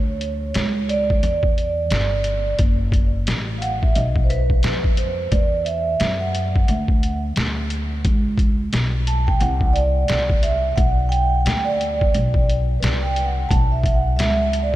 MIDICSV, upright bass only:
0, 0, Header, 1, 2, 480
1, 0, Start_track
1, 0, Key_signature, 2, "minor"
1, 0, Tempo, 681818
1, 1828, Time_signature, 4, 2, 24, 8
1, 10388, End_track
2, 0, Start_track
2, 0, Title_t, "Upright bass"
2, 0, Program_c, 0, 32
2, 0, Note_on_c, 0, 38, 94
2, 362, Note_off_c, 0, 38, 0
2, 387, Note_on_c, 0, 37, 98
2, 843, Note_off_c, 0, 37, 0
2, 866, Note_on_c, 0, 40, 107
2, 1323, Note_off_c, 0, 40, 0
2, 1345, Note_on_c, 0, 31, 97
2, 1802, Note_off_c, 0, 31, 0
2, 1821, Note_on_c, 0, 30, 98
2, 2280, Note_off_c, 0, 30, 0
2, 2305, Note_on_c, 0, 33, 98
2, 2762, Note_off_c, 0, 33, 0
2, 2787, Note_on_c, 0, 35, 105
2, 3243, Note_off_c, 0, 35, 0
2, 3265, Note_on_c, 0, 41, 75
2, 3722, Note_off_c, 0, 41, 0
2, 3744, Note_on_c, 0, 40, 96
2, 4202, Note_off_c, 0, 40, 0
2, 4228, Note_on_c, 0, 42, 103
2, 4684, Note_off_c, 0, 42, 0
2, 4705, Note_on_c, 0, 38, 104
2, 5162, Note_off_c, 0, 38, 0
2, 5186, Note_on_c, 0, 38, 80
2, 5643, Note_off_c, 0, 38, 0
2, 5666, Note_on_c, 0, 37, 99
2, 6123, Note_off_c, 0, 37, 0
2, 6144, Note_on_c, 0, 35, 96
2, 6602, Note_off_c, 0, 35, 0
2, 6625, Note_on_c, 0, 36, 123
2, 7082, Note_off_c, 0, 36, 0
2, 7108, Note_on_c, 0, 36, 86
2, 7564, Note_off_c, 0, 36, 0
2, 7588, Note_on_c, 0, 35, 107
2, 8044, Note_off_c, 0, 35, 0
2, 8063, Note_on_c, 0, 38, 99
2, 8521, Note_off_c, 0, 38, 0
2, 8550, Note_on_c, 0, 35, 105
2, 9005, Note_off_c, 0, 35, 0
2, 9027, Note_on_c, 0, 36, 92
2, 9483, Note_off_c, 0, 36, 0
2, 9509, Note_on_c, 0, 35, 100
2, 9988, Note_off_c, 0, 35, 0
2, 9988, Note_on_c, 0, 37, 107
2, 10388, Note_off_c, 0, 37, 0
2, 10388, End_track
0, 0, End_of_file